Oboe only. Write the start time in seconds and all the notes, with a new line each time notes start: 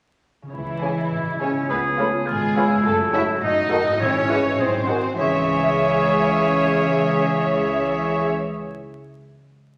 1.11 E4
1.69 G#4
2.27 F4
2.56 E4
3.43 D#4
4.02 E4
4.30 F#4
4.60 G#4
5.19 G#4